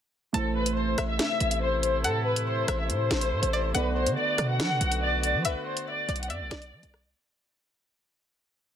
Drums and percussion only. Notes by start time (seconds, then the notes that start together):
0.34 closed hi-hat
0.66 closed hi-hat
0.98 cross-stick, closed hi-hat
1.19 snare, closed hi-hat
1.40 closed hi-hat
1.51 closed hi-hat
1.83 closed hi-hat
2.04 closed hi-hat
2.36 closed hi-hat
2.68 cross-stick, closed hi-hat
2.90 closed hi-hat
3.11 snare, closed hi-hat
3.21 closed hi-hat
3.43 closed hi-hat
3.75 closed hi-hat
4.07 closed hi-hat
4.38 cross-stick, closed hi-hat
4.60 snare, closed hi-hat
4.81 closed hi-hat
4.92 closed hi-hat
5.23 closed hi-hat
5.45 closed hi-hat
5.77 closed hi-hat
6.09 closed hi-hat
6.16 closed hi-hat
6.23 closed hi-hat
6.30 closed hi-hat
6.51 snare, closed hi-hat
6.62 closed hi-hat
6.83 closed hi-hat
6.94 cross-stick